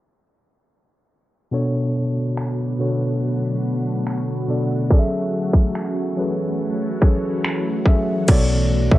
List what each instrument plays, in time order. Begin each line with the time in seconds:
1.51 tine electric piano B2 B3 D4 A4 C#5, ambient pad D3 F#3 A3 B3 F#4
2.37 finger snap
2.78 tine electric piano B2 B3 D4 A4 C#5
4.07 finger snap
4.48 tine electric piano B2 B3 D4 A4 D5
4.90 ambient pad E3 C#4, tine electric piano F#3 C#4 G#4 A4 D5, kick
4.99 tine electric piano E5
5.53 kick
5.75 finger snap
6.17 tine electric piano F#3 C#4 G#4 A4 B4
7.01 tine electric piano F#3 C#4 G#4 A4 C#5, kick
7.45 finger snap
7.86 tine electric piano F#3 C#4 G#4 A4 E5, kick
8.28 808-style bass B1, tine electric piano B2 B3 A4 C#5 D5, ambient pad D3 F#3 A3 B3 F#4, kick, closed hi-hat, crash
8.91 tine electric piano B2 B3 A4 C#5 E5, 808-style bass B2, kick